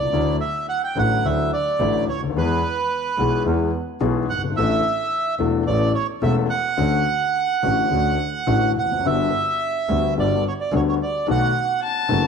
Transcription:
Already playing: C2 D5
0.05 C#2
0.11 D2 D3 F#3 A3 E4
0.41 E5
0.69 F#5
0.84 G5
0.96 A1 A2 D3 F#3 A3 E4 F#5
1.24 D2 D3 F#3 A3 E4 E5
1.53 D5
1.80 A1 A2 D3 F#3 A3 E4
2.08 D2 C#5
2.16 C#2
2.23 D2
2.30 D#2
2.36 E2 E3 G#3 B3 G#4 B4
3.18 B1 B2 E3 G#3 B3 G#4
3.45 E2 E3 G#3 B3 G#4
4.01 B1 B2 E3 G#3 B3 G#4
4.29 G1 F#5
4.36 F#1
4.44 G1
4.51 G#1
4.56 A1 A2 E3 A3 D4 A4 E5
5.39 E1 E2 E3 A3 D4 A4
5.67 A1 A2 E3 A3 C#4 A4 D5
5.95 C#5
6.22 E1 E2 E3 A3 C#4 A4 E5
6.50 F#5
6.77 D2 D3 A3 C#4 F#4
7.62 A1 A2 D3 A3 C#4 F#4
7.91 D2 D3 A3 C#4 F#4
8.47 A1 A2 D3 A3 C#4 F#4
8.77 F1 F#5
8.84 E2
8.91 F2
8.99 F#2
9.04 G1 G2 D3 G3 B3 F#4 E5
9.89 D2 D3 G3 B3 F#4
10.16 G1 G2 D3 G3 B3 F#4 D5
10.48 C#5
10.61 D5
10.72 D2 D3 G3 B3 F#4 C#5
10.89 C#5
11.03 D5
11.27 B1 B2 D#3 A3 B3 F#4 F#5
11.83 A5
12.09 F#1 F#2 D#3 A3 B3 F#4

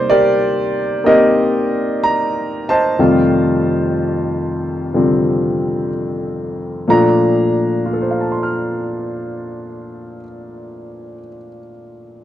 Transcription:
Already playing: C3 G3 A#3 D#4 G4 A#4 C5 D5
0.10 G4 A#4 D5
1.04 A#3 C4 D#4 G4 A#4 D#5
2.04 A#5
2.69 C5 D#5 A5
2.99 F2 C3 D#3 G3 A3 F4
4.93 C3 D3 F3 G3 C4
6.88 A#2 F3 A3 D4 A#5
7.86 F4
7.93 A4
8.02 C5
8.11 F5
8.21 A5
8.32 C6
8.43 F6

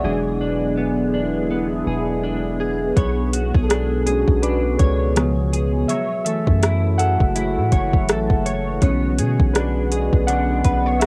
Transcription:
Already playing: G#3 B3 D4 C#5 D5
0.04 E1 D3 E3 F#3 G#3 D4 E4 G#4
0.41 D4
0.78 B3
1.14 D4
1.51 B3
1.87 E1 G#4
2.23 D4
2.60 G#4
2.97 B1 B2 B3 F#4 C#5, kick, closed hi-hat
3.33 F#4, closed hi-hat
3.54 B1 G#4, kick
3.63 A4
3.69 D4 G#4, cross-stick, closed hi-hat
4.06 G#3 C#4 D4 G#4, closed hi-hat
4.28 B1, kick
4.42 D4 B4, closed hi-hat
4.79 C#2 C#5, kick, closed hi-hat
5.16 C#3 F3 G#3 B3, cross-stick, closed hi-hat
5.53 G#4, closed hi-hat
5.88 E3 F#3 A3 F#4 C#5 E5, closed hi-hat
6.25 E3 A3 G#4 A4 E5, closed hi-hat
6.47 F#2, kick
6.63 E4, cross-stick, closed hi-hat
6.98 A4 F#5, closed hi-hat
7.20 F#1, kick
7.35 E3 A3 E4 G#4, closed hi-hat
7.57 A2
7.72 F#1 C#5, kick, closed hi-hat
7.93 kick
8.09 A1 A4, cross-stick, closed hi-hat
8.30 F#1, kick
8.46 C#5, closed hi-hat
8.82 B1 D3 G#3 B3 C#4 C#5, kick, closed hi-hat, swell
9.18 B2 G#4, closed hi-hat
9.40 B1, kick
9.54 D4 B4, cross-stick, closed hi-hat
9.92 G#4, closed hi-hat
10.13 B1, kick
10.27 D3 G#3 C#4 D4 F#5, closed hi-hat
10.64 B1 B4, kick, closed hi-hat
10.86 C#5
10.99 F#4 E5, cross-stick, closed hi-hat

